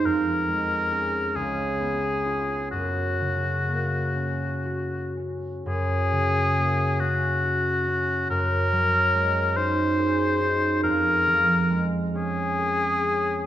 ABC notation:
X:1
M:6/8
L:1/8
Q:3/8=45
K:F#
V:1 name="Oboe"
A3 G3 | F4- F z | G3 F3 | A3 ^B3 |
A2 z G3 |]
V:2 name="Harp"
[E,,G,G] G, [CG] C,, B, [CE] | F,, C, A, C F C | F,, C, A, C F C | F,, F, G, D G D |
E,, E, G, C G C |]